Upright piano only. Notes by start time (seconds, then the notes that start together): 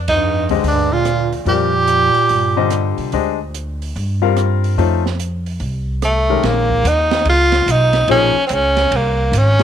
0.50 D3 G#3 G4 C5 D#5
1.47 G3 C4 F4 A#4 D5
2.57 D3 G3 G4 C5 D#5
3.13 G#3 D4 G4 C5 D#5
4.22 G3 C4 F4 A#4 F5
4.78 A3 C#4 D#4 F4 C5
6.30 D#3 G#3 C#4 G4 A#4
8.09 F3 A#3 D#4 G#4 C5
9.60 F3